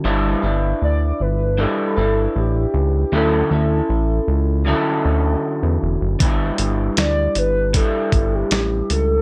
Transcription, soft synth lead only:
\new Staff \with { instrumentName = "Soft synth lead" } { \time 4/4 \key g \lydian \tempo 4 = 78 r4 d''8 b'8 a'4 g'4 | a'4. r2 r8 | r4 d''8 b'8 a'8. g'8. a'8 | }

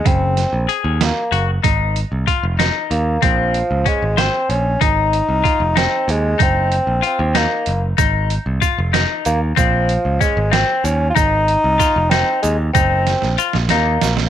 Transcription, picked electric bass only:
\new Staff \with { instrumentName = "Picked electric bass" } { \clef bass \time 5/8 \key aes \mixolydian \tempo 4 = 94 ges,,8. bes,,16 r16 ees,8 r16 ges,,8 | aes,,8. c,16 r16 f,,8 r16 ees,8 | bes,,8. des,16 r16 aes,,8 r16 bes,,8 | aes,,8. c,16 r16 f,,8 r16 ees,8 |
ges,,8. bes,,16 r16 ees,8 r16 ges,,8 | aes,,8. c,16 r16 f,,8 r16 ees,8 | bes,,8. des,16 r16 aes,,8 r16 ees,8 | aes,,8. c,16 r16 f,,8 r16 ees,8 |
ges,,8. bes,,16 r16 bes,,16 ees,8 bes,,8 | }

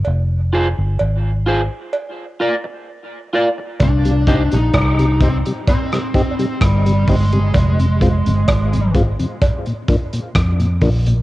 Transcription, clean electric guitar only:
\new Staff \with { instrumentName = "Clean electric guitar" } { \time 4/4 \key c \minor \tempo 4 = 64 r8 <f' aes' c''>8 r8 <f' aes' c''>8 r8 <f' bes' d''>8 r8 <f' bes' d''>8 | r8 <ees' g' c''>8 r2. | r1 | }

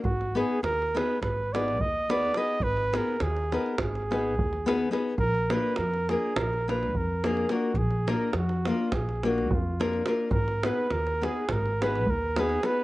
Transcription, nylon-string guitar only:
\new Staff \with { instrumentName = "Nylon-string guitar" } { \time 9/8 \tempo 4. = 70 r8 <ces' ees' aes' ces''>8 r8 <ces' ees' aes' ces''>8 r8 <ces' ees' aes' ces''>8 r8 <ces' ees' aes' ces''>8 <ces' ees' aes' ces''>8 | r8 <ces' ees' aes' ces''>8 r8 <ces' ees' aes' ces''>8 r8 <ces' ees' aes' ces''>8 r8 <ces' ees' aes' ces''>8 <ces' ees' aes' ces''>8 | r8 <bes d' f' bes'>8 r8 <bes d' f' bes'>8 r8 <bes d' f' bes'>8 r8 <bes d' f' bes'>8 <bes d' f' bes'>8 | r8 <bes d' f' bes'>8 r8 <bes d' f' bes'>8 r8 <bes d' f' bes'>8 r8 <bes d' f' bes'>8 <bes d' f' bes'>8 |
r8 <ces' ees' aes' ces''>8 r8 <ces' ees' aes' ces''>8 r8 <ces' ees' aes' ces''>8 r8 <ces' ees' aes' ces''>8 <ces' ees' aes' ces''>8 | }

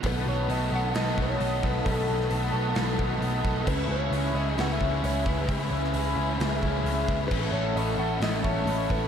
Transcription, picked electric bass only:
\new Staff \with { instrumentName = "Picked electric bass" } { \clef bass \time 4/4 \key b \mixolydian \tempo 4 = 132 b,,8 b,,8 b,,8 b,,8 b,,8 b,,8 b,,8 b,,8 | b,,8 b,,8 b,,8 b,,8 b,,8 b,,8 b,,8 b,,8 | cis,8 cis,8 cis,8 cis,8 cis,8 cis,8 cis,8 cis,8 | cis,8 cis,8 cis,8 cis,8 cis,8 cis,8 cis,8 cis,8 |
a,,8 a,,8 a,,8 a,,8 a,,8 a,,8 a,,8 a,,8 | }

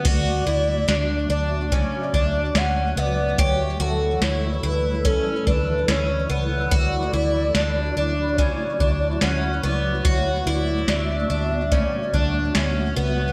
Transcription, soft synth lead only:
\new Staff \with { instrumentName = "Soft synth lead" } { \time 4/4 \key d \major \tempo 4 = 72 d''4. d''8 d''4 fis''8 d''8 | cis''8 a'8 cis''8 b'8 a'8 b'8 cis''8. r16 | d''4. d''8 d''4 fis''8 d''8 | cis''8 d''8 e''4 d''4 r4 | }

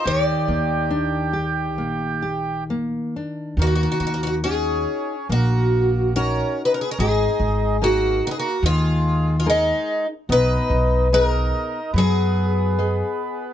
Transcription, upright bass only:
\new Staff \with { instrumentName = "Upright bass" } { \clef bass \time 4/4 \key ees \major \tempo 4 = 72 ees,8 ees,4. bes,,2 | \key ees \minor ees,8 ees,4. bes,,2 | aes,,8 aes,,4. ees,2 | b,,8 b,,4. fis,2 | }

